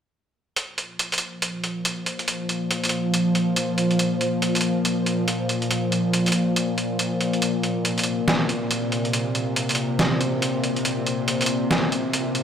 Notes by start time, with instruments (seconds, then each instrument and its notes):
0.56 synth drone A#2 F3, closed hi-hat
0.78 closed hi-hat
0.99 closed hi-hat
1.12 closed hi-hat
1.18 closed hi-hat
1.42 closed hi-hat
1.64 closed hi-hat
1.85 closed hi-hat
2.06 closed hi-hat
2.19 closed hi-hat
2.28 closed hi-hat
2.49 closed hi-hat
2.71 closed hi-hat
2.84 closed hi-hat
2.89 closed hi-hat
3.14 closed hi-hat
3.35 closed hi-hat
3.56 closed hi-hat
3.78 closed hi-hat
3.91 closed hi-hat
3.99 closed hi-hat
4.21 closed hi-hat
4.42 closed hi-hat
4.55 closed hi-hat
4.61 closed hi-hat
4.85 closed hi-hat
5.06 closed hi-hat
5.28 closed hi-hat
5.49 closed hi-hat
5.62 closed hi-hat
5.71 closed hi-hat
5.92 closed hi-hat
6.13 closed hi-hat
6.26 closed hi-hat
6.32 closed hi-hat
6.56 closed hi-hat
6.78 closed hi-hat
6.99 closed hi-hat
7.21 closed hi-hat
7.33 closed hi-hat
7.42 synth drone C3, closed hi-hat
7.63 closed hi-hat
7.85 closed hi-hat
7.98 closed hi-hat
8.03 closed hi-hat
8.28 snare, closed hi-hat
8.49 closed hi-hat
8.71 closed hi-hat
8.92 closed hi-hat
9.05 closed hi-hat
9.13 closed hi-hat
9.35 closed hi-hat
9.56 closed hi-hat
9.69 closed hi-hat
9.75 closed hi-hat
9.99 snare, closed hi-hat
10.21 closed hi-hat
10.42 closed hi-hat
10.64 closed hi-hat
10.76 closed hi-hat
10.85 closed hi-hat
11.06 closed hi-hat
11.28 closed hi-hat
11.41 closed hi-hat
11.46 closed hi-hat
11.71 snare, closed hi-hat
11.92 closed hi-hat
12.13 closed hi-hat
12.35 closed hi-hat